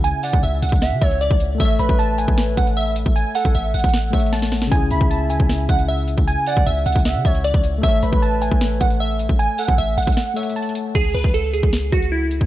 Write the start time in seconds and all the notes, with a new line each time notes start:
Already playing: C#2 C#3 C#4 E4 G#4
0.04 G#5, closed hi-hat
0.23 D5 F#5, open hi-hat
0.33 C#2, kick
0.43 C#2 E5, closed hi-hat
0.62 C#2 F#5, closed hi-hat
0.69 C#2, kick, closed hi-hat
0.75 closed hi-hat
0.82 E5, snare, closed hi-hat
0.92 C#3
1.01 C#2 C#5 E5, kick, closed hi-hat
1.11 closed hi-hat
1.21 D5, closed hi-hat
1.31 C#2, kick
1.40 closed hi-hat
1.55 A3 A4
1.60 A1 C#5 E5, kick, closed hi-hat
1.65 E5
1.79 A1 B4 B5, closed hi-hat
1.89 A1, kick
1.99 A5, closed hi-hat
2.18 G#5, closed hi-hat
2.28 A1, kick
2.38 snare, closed hi-hat
2.57 A1 F#5, kick, closed hi-hat
2.67 closed hi-hat
2.77 E5
2.96 closed hi-hat
3.06 A1, kick
3.16 G#5, closed hi-hat
3.35 A4 F#5, open hi-hat
3.45 A1, kick
3.55 A1 E5, closed hi-hat
3.74 A1 F#5, closed hi-hat
3.79 closed hi-hat
3.84 A1, kick, closed hi-hat
3.89 closed hi-hat
3.94 snare, closed hi-hat
4.11 A1 A3 A4 C#5 E5, kick, closed hi-hat
4.16 F#5, closed hi-hat
4.26 closed hi-hat
4.33 A5, snare, closed hi-hat
4.39 snare, closed hi-hat
4.46 closed hi-hat
4.52 snare, closed hi-hat
4.62 snare
4.67 C#3 C#4
4.72 C#2 E4 G#5, kick, closed hi-hat
4.77 G#4
4.91 C#2 E5 B5, closed hi-hat
5.01 C#2, kick
5.11 A5, closed hi-hat
5.30 D2 G#5, closed hi-hat
5.40 C#2, kick
5.49 snare, closed hi-hat
5.69 C#2 F#5, kick, closed hi-hat
5.79 closed hi-hat
5.88 E5
6.08 closed hi-hat
6.18 C#2, kick
6.27 G#5, closed hi-hat
6.46 D5 F#5, open hi-hat
6.57 C#2, kick
6.66 C#2 E5, closed hi-hat
6.86 C#2 F#5, closed hi-hat
6.92 C#2, kick, closed hi-hat
6.99 closed hi-hat
7.05 E5, snare, closed hi-hat
7.15 C#3
7.25 C#2 C#5 E5, kick, closed hi-hat
7.35 closed hi-hat
7.44 D5, closed hi-hat
7.54 C#2, kick
7.64 closed hi-hat
7.78 A3 A4
7.83 A1 C#5 E5, kick, closed hi-hat
7.88 E5
8.02 A1 B4 B5, closed hi-hat
8.13 A1, kick
8.22 A5, closed hi-hat
8.42 G#5, closed hi-hat
8.51 A1, kick
8.61 snare, closed hi-hat
8.81 A1 F#5, kick, closed hi-hat
8.90 closed hi-hat
9.00 E5
9.19 closed hi-hat
9.29 A1, kick
9.39 G#5, closed hi-hat
9.58 A4 F#5, open hi-hat
9.68 A1, kick
9.78 A1 E5, closed hi-hat
9.98 A1 F#5, closed hi-hat
10.02 closed hi-hat
10.07 A1, kick, closed hi-hat
10.12 closed hi-hat
10.17 snare, closed hi-hat
10.34 A3 A4 C#5 E5, closed hi-hat
10.39 F#5, closed hi-hat
10.50 closed hi-hat
10.56 A5, closed hi-hat
10.62 closed hi-hat
10.69 closed hi-hat
10.75 closed hi-hat
10.95 C#2 G#4, kick, closed hi-hat, crash
11.14 C#2 B4, closed hi-hat
11.24 C#2, kick
11.34 A4, closed hi-hat
11.53 D2 G#4, closed hi-hat
11.63 C#2, kick
11.73 snare, closed hi-hat
11.92 C#2 F#4, kick, closed hi-hat
12.02 closed hi-hat
12.12 E4
12.31 closed hi-hat
12.41 C#2, kick